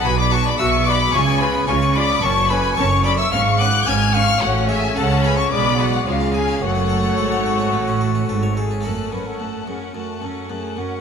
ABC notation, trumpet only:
X:1
M:4/4
L:1/16
Q:1/4=109
K:F#m
V:1 name="Trumpet"
B d c d e2 d2 c2 B2 c2 d2 | c2 B2 c2 d e ^e2 f2 g2 e2 | F2 G2 A2 B c d2 F2 ^E2 G2 | F12- F2 G2 |
A2 B A3 G2 F2 A2 G2 F2 |]